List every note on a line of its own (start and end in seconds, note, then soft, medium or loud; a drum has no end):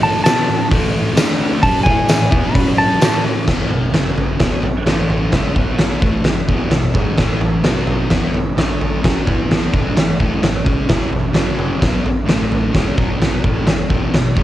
0.00 0.24 A2 loud
0.00 0.24 E3 loud
0.00 0.24 A3 loud
0.00 0.23 A5 loud
0.24 0.47 B2 loud
0.24 0.47 F#3 medium
0.24 0.47 B3 loud
0.24 0.69 A5 loud
0.24 snare loud
0.24 open hi-hat medium
0.24 tambourine loud
0.48 0.66 A2 medium
0.48 0.66 E3 medium
0.70 1.16 A2 medium
0.70 1.16 E3 loud
0.70 1.16 A3 loud
0.70 kick loud
0.70 open hi-hat medium
1.16 1.62 D3 loud
1.16 1.62 A3 loud
1.16 1.62 D4 loud
1.16 snare loud
1.16 open hi-hat medium
1.16 tambourine loud
1.62 1.85 F#3 loud
1.62 1.85 C#4 loud
1.62 1.85 F#4 loud
1.62 1.83 A5 loud
1.62 kick loud
1.62 open hi-hat medium
1.83 2.08 A3 loud
1.83 2.08 E4 medium
1.83 2.09 A4 loud
1.83 2.53 G#5 medium
1.83 kick loud
2.08 2.27 A2 medium
2.08 2.27 E3 medium
2.08 snare loud
2.08 open hi-hat medium
2.08 tambourine loud
2.31 2.54 E3 loud
2.31 2.54 B3 loud
2.31 2.54 E4 loud
2.31 kick loud
2.53 3.00 F#3 loud
2.53 3.01 C#4 loud
2.53 3.01 F#4 loud
2.53 2.76 B5 medium
2.53 kick loud
2.53 open hi-hat medium
2.78 3.23 A5 loud
3.00 3.46 A2 loud
3.00 3.47 E3 loud
3.00 3.47 A3 loud
3.00 snare loud
3.00 open hi-hat medium
3.00 tambourine loud
3.47 3.69 E2 medium
3.47 3.69 B2 medium
3.47 3.70 E3 loud
3.47 kick loud
3.47 snare loud
3.47 floor tom medium
3.47 crash medium
3.70 3.89 E2 medium
3.70 3.89 B2 medium
3.70 floor tom medium
3.93 4.39 F#2 medium
3.93 4.39 C#3 medium
3.93 4.39 F#3 medium
3.93 snare loud
3.93 floor tom medium
4.18 floor tom medium
4.40 4.62 B2 medium
4.40 4.63 F#3 medium
4.40 4.63 B3 medium
4.40 kick loud
4.40 snare loud
4.40 floor tom medium
4.63 muted distorted electric guitar stroke medium
4.63 floor tom medium
4.86 5.32 A2 medium
4.86 5.32 E3 loud
4.86 5.32 A3 loud
4.86 snare loud
4.86 floor tom medium
5.10 floor tom medium
5.32 5.55 C#3 loud
5.32 5.55 G#3 loud
5.32 5.56 C#4 loud
5.32 kick medium
5.32 snare loud
5.32 floor tom medium
5.56 6.01 B2 medium
5.56 6.02 F#3 medium
5.56 6.02 B3 medium
5.56 kick medium
5.56 floor tom medium
5.79 snare loud
5.79 floor tom medium
6.02 6.25 A2 medium
6.02 6.25 E3 loud
6.02 6.25 A3 loud
6.02 kick loud
6.02 floor tom medium
6.24 6.44 E2 medium
6.24 6.44 B2 medium
6.24 snare loud
6.24 floor tom medium
6.48 6.71 E2 medium
6.48 6.71 B2 medium
6.48 6.72 E3 loud
6.48 kick medium
6.48 floor tom medium
6.71 6.91 E2 medium
6.71 6.91 B2 medium
6.71 snare loud
6.71 floor tom medium
6.94 7.18 G#2 medium
6.94 7.18 D#3 medium
6.94 7.18 G#3 medium
6.94 kick loud
6.94 floor tom medium
7.17 7.40 A2 medium
7.17 7.41 E3 medium
7.17 7.42 A3 loud
7.17 kick loud
7.17 snare loud
7.17 floor tom medium
7.41 7.60 A2 medium
7.41 7.60 E3 medium
7.41 floor tom medium
7.63 8.10 B2 medium
7.63 8.10 F#3 medium
7.63 8.10 B3 medium
7.63 snare loud
7.63 floor tom medium
7.87 floor tom medium
8.10 8.32 E3 medium
8.10 8.34 B3 medium
8.10 8.34 E4 medium
8.10 kick loud
8.10 snare loud
8.10 floor tom medium
8.33 muted distorted electric guitar stroke medium
8.33 floor tom medium
8.57 9.02 D3 medium
8.57 9.03 A3 medium
8.57 9.04 D4 loud
8.57 snare loud
8.57 floor tom medium
8.81 floor tom medium
9.02 9.26 F#3 medium
9.02 9.26 C#4 loud
9.02 9.26 F#4 loud
9.02 kick loud
9.02 snare loud
9.02 floor tom medium
9.26 9.72 E3 medium
9.26 9.72 B3 medium
9.26 9.73 E4 loud
9.26 kick medium
9.26 floor tom medium
9.51 snare loud
9.51 floor tom medium
9.73 9.96 D3 medium
9.73 9.96 A3 medium
9.73 9.96 D4 loud
9.73 kick loud
9.73 floor tom medium
9.96 10.15 A2 medium
9.96 10.15 E3 medium
9.96 snare loud
9.96 floor tom medium
10.19 10.41 A2 medium
10.19 10.42 E3 medium
10.19 10.42 A3 medium
10.19 kick medium
10.19 floor tom medium
10.43 10.61 A2 medium
10.43 10.62 E3 medium
10.43 snare loud
10.43 floor tom medium
10.64 10.88 C#3 medium
10.64 10.88 G#3 medium
10.64 10.89 C#4 medium
10.64 kick loud
10.64 floor tom medium
10.88 11.11 E2 loud
10.88 11.11 B2 loud
10.88 11.11 E3 loud
10.88 kick loud
10.88 snare loud
10.88 floor tom medium
11.12 11.31 E2 medium
11.12 11.31 B2 medium
11.12 floor tom medium
11.34 11.80 F#2 medium
11.34 11.80 C#3 medium
11.34 11.80 F#3 loud
11.34 snare loud
11.34 floor tom medium
11.59 floor tom medium
11.81 12.04 B2 medium
11.81 12.04 F#3 medium
11.81 12.04 B3 loud
11.81 kick loud
11.81 snare loud
11.81 floor tom medium
12.05 muted distorted electric guitar stroke medium
12.05 floor tom medium
12.26 12.72 A2 medium
12.26 12.73 E3 medium
12.26 12.73 A3 medium
12.26 snare loud
12.26 floor tom medium
12.52 floor tom medium
12.73 12.96 C#3 medium
12.73 12.96 G#3 loud
12.73 12.97 C#4 loud
12.73 kick loud
12.73 snare loud
12.73 floor tom medium
12.97 13.42 B2 medium
12.97 13.43 F#3 medium
12.97 13.43 B3 medium
12.97 kick medium
12.97 floor tom medium
13.22 snare loud
13.22 floor tom medium
13.43 13.66 A2 medium
13.43 13.66 E3 loud
13.43 13.66 A3 medium
13.43 kick loud
13.43 floor tom medium
13.66 13.85 E2 medium
13.66 13.85 B2 medium
13.66 snare loud
13.66 floor tom medium
13.89 14.11 E2 medium
13.89 14.11 B2 loud
13.89 14.12 E3 medium
13.89 kick medium
13.89 floor tom medium
14.12 14.31 E2 medium
14.12 14.31 B2 medium
14.12 snare loud
14.12 floor tom medium
14.36 14.43 G#2 medium
14.36 14.43 D#3 medium
14.36 14.43 G#3 loud
14.36 kick loud
14.36 floor tom medium